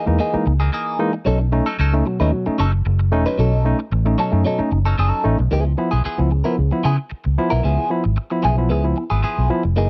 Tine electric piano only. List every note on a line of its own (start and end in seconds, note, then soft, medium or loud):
0.06 0.17 E3 medium
0.06 0.17 G#3 medium
0.06 0.17 A#3 medium
0.06 0.18 D#4 medium
0.33 0.44 E3 medium
0.33 0.44 G#3 medium
0.33 0.44 A#3 medium
0.33 0.44 D#4 medium
0.46 0.52 A#3 soft
0.46 0.52 D#4 soft
0.99 1.11 E3 medium
0.99 1.11 G#3 medium
0.99 1.11 A#3 medium
0.99 1.11 D#4 loud
1.26 1.38 B2 medium
1.26 1.38 F#3 medium
1.40 1.45 C#4 soft
1.40 1.45 D#4 soft
1.52 1.64 A3 medium
1.52 1.64 C#4 medium
1.52 1.64 D#4 medium
1.93 2.04 A3 medium
1.93 2.04 C#4 medium
1.93 2.04 D#4 medium
2.06 2.18 B2 medium
2.06 2.18 F#3 medium
2.20 2.30 A3 medium
2.20 2.31 C#4 medium
2.20 2.31 D#4 medium
2.32 2.44 B2 medium
2.32 2.44 F#3 medium
2.46 2.57 A3 medium
2.46 2.57 C#4 medium
2.46 2.57 D#4 medium
2.59 2.65 C#4 soft
2.59 2.65 D#4 soft
3.12 3.24 A3 medium
3.12 3.24 C#4 medium
3.12 3.24 D#4 loud
3.39 3.51 B2 medium
3.39 3.51 F#3 medium
3.53 3.58 C#4 soft
3.53 3.58 D#4 soft
3.65 3.77 A3 medium
3.65 3.77 C#4 medium
3.65 3.77 D#4 loud
4.05 4.16 A3 medium
4.05 4.16 C#4 medium
4.05 4.16 D#4 medium
4.18 4.30 B2 medium
4.18 4.30 F#3 medium
4.32 4.43 A3 medium
4.32 4.43 C#4 medium
4.32 4.43 D#4 medium
4.44 4.57 B2 medium
4.44 4.57 F#3 medium
4.58 4.69 A3 medium
4.58 4.69 C#4 medium
4.58 4.70 D#4 medium
4.71 4.77 C#4 soft
4.71 4.77 D#4 soft
5.24 5.36 A3 medium
5.24 5.37 C#4 medium
5.24 5.37 D#4 loud
5.51 5.63 C#3 medium
5.65 5.70 B3 soft
5.65 5.70 E4 soft
5.78 5.90 F3 medium
5.78 5.90 B3 medium
5.78 5.90 E4 medium
6.18 6.29 F3 medium
6.18 6.29 B3 medium
6.18 6.29 E4 medium
6.31 6.43 C#3 medium
6.45 6.56 F3 medium
6.45 6.56 B3 medium
6.45 6.56 E4 medium
6.58 6.70 C#3 medium
6.72 6.82 F3 medium
6.72 6.83 B3 medium
6.72 6.83 E4 medium
6.84 6.90 B3 soft
6.84 6.90 E4 soft
7.38 7.50 F3 medium
7.38 7.50 B3 medium
7.38 7.50 E4 loud
7.64 7.76 C#3 medium
7.78 7.83 B3 soft
7.78 7.83 E4 medium
7.90 8.02 F3 medium
7.90 8.03 B3 medium
7.90 8.03 E4 medium
8.31 8.42 F3 medium
8.31 8.42 B3 medium
8.31 8.42 E4 medium
8.44 8.56 C#3 medium
8.57 8.68 F3 medium
8.57 8.69 B3 medium
8.57 8.69 E4 medium
8.71 8.82 C#3 medium
8.84 8.95 F3 medium
8.84 8.95 B3 medium
8.84 8.95 E4 medium
8.97 9.03 B3 soft
8.97 9.03 E4 soft
9.50 9.62 F3 medium
9.50 9.62 B3 medium
9.50 9.62 E4 loud